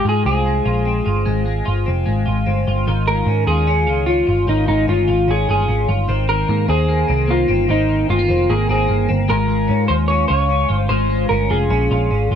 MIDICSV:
0, 0, Header, 1, 4, 480
1, 0, Start_track
1, 0, Tempo, 401875
1, 1509, Time_signature, 4, 2, 24, 8
1, 14753, End_track
2, 0, Start_track
2, 0, Title_t, "Clean electric guitar"
2, 0, Program_c, 0, 27
2, 104, Note_on_c, 0, 68, 98
2, 298, Note_off_c, 0, 68, 0
2, 312, Note_on_c, 0, 68, 98
2, 2905, Note_off_c, 0, 68, 0
2, 3673, Note_on_c, 0, 70, 105
2, 4143, Note_off_c, 0, 70, 0
2, 4148, Note_on_c, 0, 68, 112
2, 4821, Note_off_c, 0, 68, 0
2, 4852, Note_on_c, 0, 65, 85
2, 5355, Note_off_c, 0, 65, 0
2, 5364, Note_on_c, 0, 63, 86
2, 5577, Note_off_c, 0, 63, 0
2, 5592, Note_on_c, 0, 63, 88
2, 5837, Note_off_c, 0, 63, 0
2, 5841, Note_on_c, 0, 65, 92
2, 6329, Note_off_c, 0, 65, 0
2, 6337, Note_on_c, 0, 68, 87
2, 6562, Note_off_c, 0, 68, 0
2, 6576, Note_on_c, 0, 68, 87
2, 7009, Note_off_c, 0, 68, 0
2, 7511, Note_on_c, 0, 70, 101
2, 7956, Note_off_c, 0, 70, 0
2, 7996, Note_on_c, 0, 68, 103
2, 8724, Note_on_c, 0, 65, 82
2, 8733, Note_off_c, 0, 68, 0
2, 9200, Note_off_c, 0, 65, 0
2, 9204, Note_on_c, 0, 63, 86
2, 9672, Note_off_c, 0, 63, 0
2, 9677, Note_on_c, 0, 65, 92
2, 10150, Note_on_c, 0, 68, 90
2, 10166, Note_off_c, 0, 65, 0
2, 10371, Note_off_c, 0, 68, 0
2, 10399, Note_on_c, 0, 68, 90
2, 10839, Note_off_c, 0, 68, 0
2, 11102, Note_on_c, 0, 70, 101
2, 11797, Note_off_c, 0, 70, 0
2, 11802, Note_on_c, 0, 72, 109
2, 11870, Note_off_c, 0, 72, 0
2, 12038, Note_on_c, 0, 73, 101
2, 12264, Note_off_c, 0, 73, 0
2, 12279, Note_on_c, 0, 73, 110
2, 12816, Note_off_c, 0, 73, 0
2, 12816, Note_on_c, 0, 72, 110
2, 13003, Note_off_c, 0, 72, 0
2, 13008, Note_on_c, 0, 72, 103
2, 13480, Note_off_c, 0, 72, 0
2, 13484, Note_on_c, 0, 70, 99
2, 13743, Note_off_c, 0, 70, 0
2, 13743, Note_on_c, 0, 68, 98
2, 14657, Note_off_c, 0, 68, 0
2, 14753, End_track
3, 0, Start_track
3, 0, Title_t, "Clean electric guitar"
3, 0, Program_c, 1, 27
3, 0, Note_on_c, 1, 56, 55
3, 68, Note_on_c, 1, 65, 70
3, 313, Note_on_c, 1, 60, 58
3, 542, Note_off_c, 1, 56, 0
3, 546, Note_on_c, 1, 56, 65
3, 777, Note_off_c, 1, 65, 0
3, 782, Note_on_c, 1, 65, 70
3, 1004, Note_off_c, 1, 60, 0
3, 1019, Note_on_c, 1, 60, 60
3, 1257, Note_off_c, 1, 65, 0
3, 1262, Note_on_c, 1, 65, 69
3, 1495, Note_off_c, 1, 56, 0
3, 1500, Note_on_c, 1, 56, 83
3, 1732, Note_off_c, 1, 56, 0
3, 1737, Note_on_c, 1, 56, 58
3, 1972, Note_off_c, 1, 65, 0
3, 1976, Note_on_c, 1, 65, 68
3, 2207, Note_off_c, 1, 60, 0
3, 2222, Note_on_c, 1, 60, 56
3, 2453, Note_off_c, 1, 56, 0
3, 2457, Note_on_c, 1, 56, 62
3, 2692, Note_off_c, 1, 65, 0
3, 2696, Note_on_c, 1, 65, 66
3, 2929, Note_off_c, 1, 60, 0
3, 2943, Note_on_c, 1, 60, 61
3, 3190, Note_off_c, 1, 65, 0
3, 3194, Note_on_c, 1, 65, 72
3, 3429, Note_on_c, 1, 51, 81
3, 3432, Note_off_c, 1, 65, 0
3, 3436, Note_on_c, 1, 65, 70
3, 3474, Note_off_c, 1, 60, 0
3, 3667, Note_off_c, 1, 56, 0
3, 3672, Note_on_c, 1, 56, 58
3, 3917, Note_on_c, 1, 61, 66
3, 4138, Note_off_c, 1, 65, 0
3, 4152, Note_on_c, 1, 65, 68
3, 4371, Note_off_c, 1, 61, 0
3, 4386, Note_on_c, 1, 61, 70
3, 4606, Note_off_c, 1, 65, 0
3, 4621, Note_on_c, 1, 65, 69
3, 4845, Note_off_c, 1, 61, 0
3, 4859, Note_on_c, 1, 61, 63
3, 5085, Note_off_c, 1, 65, 0
3, 5099, Note_on_c, 1, 65, 71
3, 5334, Note_off_c, 1, 65, 0
3, 5338, Note_off_c, 1, 51, 0
3, 5343, Note_on_c, 1, 51, 74
3, 5353, Note_on_c, 1, 65, 64
3, 5579, Note_off_c, 1, 56, 0
3, 5584, Note_on_c, 1, 56, 60
3, 5814, Note_off_c, 1, 61, 0
3, 5828, Note_on_c, 1, 61, 64
3, 6049, Note_off_c, 1, 65, 0
3, 6063, Note_on_c, 1, 65, 69
3, 6293, Note_off_c, 1, 61, 0
3, 6307, Note_on_c, 1, 61, 65
3, 6541, Note_off_c, 1, 65, 0
3, 6556, Note_on_c, 1, 65, 70
3, 6774, Note_off_c, 1, 61, 0
3, 6788, Note_on_c, 1, 61, 62
3, 7015, Note_off_c, 1, 65, 0
3, 7030, Note_on_c, 1, 65, 73
3, 7258, Note_off_c, 1, 51, 0
3, 7263, Note_on_c, 1, 51, 87
3, 7267, Note_off_c, 1, 61, 0
3, 7272, Note_on_c, 1, 60, 72
3, 7317, Note_off_c, 1, 65, 0
3, 7493, Note_off_c, 1, 51, 0
3, 7508, Note_on_c, 1, 51, 64
3, 7736, Note_off_c, 1, 56, 0
3, 7741, Note_on_c, 1, 58, 64
3, 7969, Note_off_c, 1, 60, 0
3, 7983, Note_on_c, 1, 60, 75
3, 8218, Note_off_c, 1, 58, 0
3, 8223, Note_on_c, 1, 58, 69
3, 8444, Note_off_c, 1, 60, 0
3, 8458, Note_on_c, 1, 60, 72
3, 8687, Note_off_c, 1, 58, 0
3, 8691, Note_on_c, 1, 58, 65
3, 8923, Note_off_c, 1, 60, 0
3, 8937, Note_on_c, 1, 60, 76
3, 9167, Note_off_c, 1, 51, 0
3, 9172, Note_off_c, 1, 60, 0
3, 9181, Note_on_c, 1, 51, 83
3, 9187, Note_on_c, 1, 60, 71
3, 9408, Note_off_c, 1, 51, 0
3, 9422, Note_on_c, 1, 51, 60
3, 9659, Note_off_c, 1, 58, 0
3, 9664, Note_on_c, 1, 56, 67
3, 9780, Note_off_c, 1, 56, 0
3, 9780, Note_on_c, 1, 58, 57
3, 9882, Note_off_c, 1, 60, 0
3, 9897, Note_on_c, 1, 60, 66
3, 10129, Note_off_c, 1, 58, 0
3, 10144, Note_on_c, 1, 58, 69
3, 10368, Note_off_c, 1, 60, 0
3, 10382, Note_on_c, 1, 60, 75
3, 10603, Note_off_c, 1, 58, 0
3, 10608, Note_on_c, 1, 58, 62
3, 10839, Note_off_c, 1, 60, 0
3, 10853, Note_on_c, 1, 60, 77
3, 11083, Note_off_c, 1, 58, 0
3, 11088, Note_on_c, 1, 56, 84
3, 11096, Note_on_c, 1, 65, 71
3, 11147, Note_off_c, 1, 60, 0
3, 11152, Note_off_c, 1, 51, 0
3, 11318, Note_off_c, 1, 56, 0
3, 11323, Note_on_c, 1, 56, 61
3, 11561, Note_on_c, 1, 61, 65
3, 11803, Note_off_c, 1, 65, 0
3, 11808, Note_on_c, 1, 65, 66
3, 12038, Note_off_c, 1, 61, 0
3, 12052, Note_on_c, 1, 61, 68
3, 12285, Note_off_c, 1, 65, 0
3, 12289, Note_on_c, 1, 65, 73
3, 12516, Note_off_c, 1, 61, 0
3, 12531, Note_on_c, 1, 61, 66
3, 12762, Note_off_c, 1, 65, 0
3, 12767, Note_on_c, 1, 65, 75
3, 13007, Note_off_c, 1, 56, 0
3, 13012, Note_on_c, 1, 56, 84
3, 13014, Note_off_c, 1, 65, 0
3, 13019, Note_on_c, 1, 65, 77
3, 13248, Note_off_c, 1, 56, 0
3, 13253, Note_on_c, 1, 56, 60
3, 13487, Note_off_c, 1, 61, 0
3, 13502, Note_on_c, 1, 61, 70
3, 13726, Note_off_c, 1, 65, 0
3, 13730, Note_on_c, 1, 65, 68
3, 13964, Note_off_c, 1, 61, 0
3, 13978, Note_on_c, 1, 61, 73
3, 14219, Note_off_c, 1, 65, 0
3, 14224, Note_on_c, 1, 65, 71
3, 14447, Note_off_c, 1, 61, 0
3, 14461, Note_on_c, 1, 61, 67
3, 14708, Note_off_c, 1, 65, 0
3, 14713, Note_on_c, 1, 65, 75
3, 14753, Note_off_c, 1, 56, 0
3, 14753, Note_off_c, 1, 61, 0
3, 14753, Note_off_c, 1, 65, 0
3, 14753, End_track
4, 0, Start_track
4, 0, Title_t, "Picked electric bass"
4, 0, Program_c, 2, 34
4, 61, Note_on_c, 2, 44, 92
4, 267, Note_off_c, 2, 44, 0
4, 304, Note_on_c, 2, 36, 85
4, 713, Note_off_c, 2, 36, 0
4, 785, Note_on_c, 2, 34, 87
4, 1194, Note_off_c, 2, 34, 0
4, 1275, Note_on_c, 2, 31, 92
4, 1476, Note_off_c, 2, 31, 0
4, 1517, Note_on_c, 2, 32, 106
4, 1922, Note_off_c, 2, 32, 0
4, 2004, Note_on_c, 2, 31, 88
4, 2202, Note_off_c, 2, 31, 0
4, 2245, Note_on_c, 2, 29, 94
4, 2442, Note_off_c, 2, 29, 0
4, 2476, Note_on_c, 2, 32, 85
4, 2677, Note_off_c, 2, 32, 0
4, 2723, Note_on_c, 2, 32, 90
4, 2921, Note_off_c, 2, 32, 0
4, 2951, Note_on_c, 2, 31, 90
4, 3154, Note_off_c, 2, 31, 0
4, 3198, Note_on_c, 2, 31, 96
4, 3398, Note_off_c, 2, 31, 0
4, 3436, Note_on_c, 2, 32, 104
4, 3841, Note_off_c, 2, 32, 0
4, 3899, Note_on_c, 2, 44, 97
4, 4108, Note_off_c, 2, 44, 0
4, 4148, Note_on_c, 2, 39, 104
4, 4635, Note_off_c, 2, 39, 0
4, 4635, Note_on_c, 2, 37, 84
4, 5040, Note_off_c, 2, 37, 0
4, 5118, Note_on_c, 2, 31, 91
4, 5318, Note_off_c, 2, 31, 0
4, 5353, Note_on_c, 2, 32, 104
4, 5555, Note_off_c, 2, 32, 0
4, 5597, Note_on_c, 2, 32, 113
4, 5798, Note_off_c, 2, 32, 0
4, 5836, Note_on_c, 2, 31, 97
4, 6037, Note_off_c, 2, 31, 0
4, 6077, Note_on_c, 2, 32, 107
4, 6277, Note_off_c, 2, 32, 0
4, 6304, Note_on_c, 2, 32, 98
4, 6510, Note_off_c, 2, 32, 0
4, 6561, Note_on_c, 2, 31, 85
4, 6759, Note_off_c, 2, 31, 0
4, 6797, Note_on_c, 2, 32, 92
4, 6997, Note_off_c, 2, 32, 0
4, 7033, Note_on_c, 2, 31, 88
4, 7235, Note_off_c, 2, 31, 0
4, 7271, Note_on_c, 2, 32, 107
4, 7677, Note_off_c, 2, 32, 0
4, 7753, Note_on_c, 2, 44, 100
4, 7955, Note_off_c, 2, 44, 0
4, 7987, Note_on_c, 2, 39, 96
4, 8395, Note_off_c, 2, 39, 0
4, 8477, Note_on_c, 2, 36, 94
4, 8880, Note_off_c, 2, 36, 0
4, 8951, Note_on_c, 2, 31, 98
4, 9153, Note_off_c, 2, 31, 0
4, 9194, Note_on_c, 2, 32, 111
4, 9599, Note_off_c, 2, 32, 0
4, 9672, Note_on_c, 2, 31, 90
4, 9873, Note_off_c, 2, 31, 0
4, 9911, Note_on_c, 2, 29, 100
4, 10113, Note_off_c, 2, 29, 0
4, 10150, Note_on_c, 2, 32, 94
4, 10352, Note_off_c, 2, 32, 0
4, 10380, Note_on_c, 2, 32, 82
4, 10586, Note_off_c, 2, 32, 0
4, 10626, Note_on_c, 2, 31, 89
4, 10830, Note_off_c, 2, 31, 0
4, 10873, Note_on_c, 2, 31, 98
4, 11074, Note_off_c, 2, 31, 0
4, 11112, Note_on_c, 2, 32, 104
4, 11581, Note_on_c, 2, 44, 95
4, 11599, Note_off_c, 2, 32, 0
4, 11787, Note_off_c, 2, 44, 0
4, 11824, Note_on_c, 2, 39, 99
4, 12232, Note_off_c, 2, 39, 0
4, 12305, Note_on_c, 2, 37, 89
4, 12713, Note_off_c, 2, 37, 0
4, 12780, Note_on_c, 2, 31, 96
4, 12986, Note_off_c, 2, 31, 0
4, 13019, Note_on_c, 2, 32, 115
4, 13430, Note_off_c, 2, 32, 0
4, 13504, Note_on_c, 2, 31, 95
4, 13708, Note_off_c, 2, 31, 0
4, 13744, Note_on_c, 2, 29, 103
4, 13949, Note_off_c, 2, 29, 0
4, 13975, Note_on_c, 2, 34, 99
4, 14184, Note_off_c, 2, 34, 0
4, 14229, Note_on_c, 2, 34, 90
4, 14432, Note_off_c, 2, 34, 0
4, 14472, Note_on_c, 2, 32, 93
4, 14673, Note_off_c, 2, 32, 0
4, 14706, Note_on_c, 2, 31, 98
4, 14753, Note_off_c, 2, 31, 0
4, 14753, End_track
0, 0, End_of_file